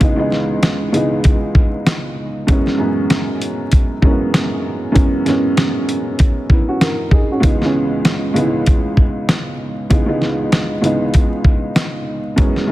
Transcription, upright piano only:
Already playing: G#3 B3 D#4 E4
0.00 C#2 E3 G#3 B3 D#4
0.16 C#2 E3 G#3 B3 D#4
0.92 C#2 E3 G#3 B3 D#4
2.47 F#2 E3 G#3 B3 C#4
2.78 F#2 E3 G#3 B3 E4
4.02 F#2 E3 G#3 A#3 C#4
4.11 B3
4.92 F#2 E3 G#3 B3 C#4
5.26 F#2 E3 G#3 B3 C#4
6.51 B3 E4
6.69 C#4 F#4
6.82 E4 A#4
7.12 D#4 G#4
7.32 C#4 F#4
7.40 C#2 E3 G#3 B3 D#4
7.62 C#2 E3 G#3 B3 C#4
8.34 C#2 E3 G#3 B3 D#4
8.43 E4
9.90 C#2 E3 G#3 B3 D#4
10.06 C#2 E3 G#3 B3 D#4
10.82 C#2 E3 G#3 B3 D#4
12.36 F#2 E3 G#3 B3 C#4
12.67 F#2 E3 G#3

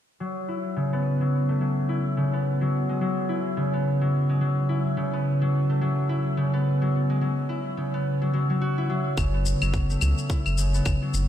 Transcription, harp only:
0.20 F#3
0.48 E4
0.76 C#3
0.93 B3
1.21 F#3
1.49 A3
1.61 F#3
1.89 E4
2.17 C#3
2.33 B3
2.61 F#3
2.89 G#3
3.01 F#3
3.29 E4
3.57 C#3
3.73 B3
4.01 F#3
4.29 G#3
4.41 F#3
4.69 E4
4.97 C#3
5.13 B3
5.42 F#3
5.70 A3
5.81 F#3
6.09 E4
6.37 C#3
6.54 B3
6.82 F#3
7.10 G#3
7.21 F#3
7.49 E4
7.77 C#3
7.94 B3
8.22 F#3
8.33 F#3
8.50 F#3
8.61 F#4
8.78 E4
8.90 F#3
9.18 C#3
9.34 B3
9.62 F#3
9.90 A3
10.02 F#3
10.30 E4
10.58 C#3
10.74 B3
11.02 F#3

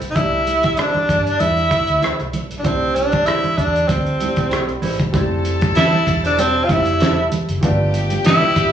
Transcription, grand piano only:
Already playing: F3 G3 A3 C4
0.14 G3 A3 D4 E4
2.63 G3 A3 D4 E4
4.19 G3 A3 D4 E4
5.13 G3 A3 C4 E4
6.69 G3 A3 C4 E4
7.61 F3 A3 B3 D4

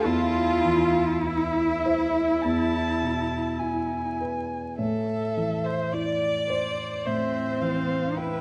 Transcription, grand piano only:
0.05 E2
0.65 E3
1.25 E4
1.86 C5
2.44 E2
3.02 B2
3.61 E4
4.21 B4
4.79 A2
5.37 E3
5.94 E4
6.50 C5
7.07 A2
7.62 E3
8.18 E4

